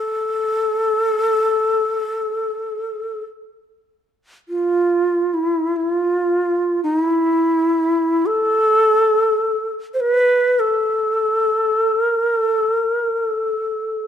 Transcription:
Already playing: A4
4.49 F4
5.34 E4
5.76 E4
5.89 F4
6.83 D#4
7.00 E4
8.26 A4
9.94 C5
10.00 B4
10.60 A4
12.01 A#4
12.40 A4
12.80 A#4
13.20 A4

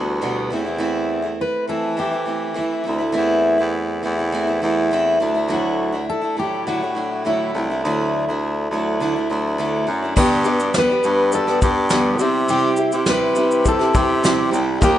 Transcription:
Already playing: D2 E3 G3 B3 F#4
0.21 E2 B2 E3 G3 B3 F#4
0.50 E2 E3 A3 C4 E4
0.65 A3 C4 E4
0.78 E3 A3 C4 E4
1.22 A3 C4 E4
1.41 B4
1.67 E3 A3 C4 E4 A4
1.97 E3 A3 C4 E4 G4
2.12 A3 C4 E4
2.26 E3 A3 C4 E4
2.54 E3 A3 C4 E4
2.58 E4
2.84 D2 E3 A3 C4 E4
2.98 A3 C4 E4
3.12 E3 A3 C4 E4
3.17 E2
3.58 E2 A3 C4 E4
4.03 E2 E3 A3 C4 E4
4.17 A3 C4 E4
4.32 E3 A3 C4 E4
4.47 A3 C4 E4
4.62 E2 E3 A3 C4 E4
4.91 E3 A3 C4 E4
5.20 D2 F#3 A3 D4 E4
5.34 A3 D4 E4
5.48 D3 F#3 A3 D4 E4
5.54 F#4
5.92 A3 D4 E4
6.10 A4
6.21 A3 D4 E4
6.37 A2 F#3 A3 D4 E4 G4
6.67 D3 F#3 A3 D4 E4 F#4
6.81 A3 D4 E4
6.95 F#3 A3 D4 E4
7.25 D3 F#3 A3 D4 E4
7.53 C2 F#3 A3 D4
7.58 E4
7.70 A3 D4 E4
7.83 D2 D3 F#3 A3 D4 E4
8.28 D2 A3 D4 E4
8.70 D2 F#3 A3 D4 E4
9.00 D3 F#3 A3 D4 E4
9.16 A3 D4 E4
9.30 D2 F#3 A3 D4 E4
9.58 D3 F#3 A3 D4 E4
9.87 F#2 F#3 A3 D4 E4
10.02 A3 D4 E4
10.15 G2 D3 G3 B3 D4 G4 D5, kick, crash
10.20 G4
10.44 G3 B3 D4 G4 D5, shaker
10.59 G3 B3 D4 G4, shaker
10.74 G2 D3 G3 B3 D4 G4, snare, shaker
10.78 B4
10.89 G3 B3 D4 G4
11.04 G2 G3 B3 D4 G4, shaker
11.31 B3 G4 A4 D5, shaker
11.47 G3 B3 D4 G4, snare
11.61 G2 G3 B3 D4 G4, kick, shaker
11.90 G2 D3 G3 B3 D4 G4, snare, shaker
12.19 C3 G3 C4 E4 G4 E5, shaker
12.48 C3 G3 C4 E4 G4, shaker
12.77 C4 G4 E5, shaker
12.92 C3 C4 E4 G4, shaker
13.06 C3 G3 C4 E4 G4 B4, snare, shaker
13.35 G3 C4 E4 G4, shaker
13.51 shaker
13.64 C4 G4 C5, kick, shaker
13.68 A4
13.79 C4 E4 G4, snare
13.93 C3 G3 C4 E4 G4, kick, shaker
13.99 G4
14.23 C3 G3 C4 E4 G4, snare, shaker
14.51 C2 G3 C4 E4 G4, shaker
14.79 D#2 D#3 F3 A#3 D#4 F4 G4 F5, kick, shaker
14.84 G4

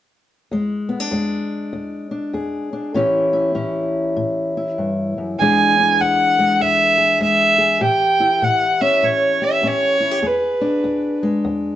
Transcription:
0.51 E2 G#3
0.89 B3
1.00 D4
1.11 E2 G#3
1.73 E2
2.11 D4
2.33 E2 G#4
2.73 D4
2.94 A2 E3 C#4 E4 G4
3.33 E4
3.55 A2 C#4
4.16 A2
4.57 E4
4.78 G2
5.18 F#2
5.39 E2 E3 G#3 D4 G#5
5.44 G#4
5.79 D4
6.01 E2 F#5
6.39 G#3
6.61 E2 E5
6.98 G#4
7.19 E2 G#3 E5
7.58 G#4
7.81 A2 G4 G5
8.20 E4
8.42 A2 F#5
8.81 C#4 E5
9.03 A2 C#5
9.42 G4 E5
9.63 A2 C#4
9.67 C#5
10.00 E4
10.11 G4
10.22 E2 G#4
10.27 B4
10.61 D4
10.84 E2
11.23 G#3
11.45 E2

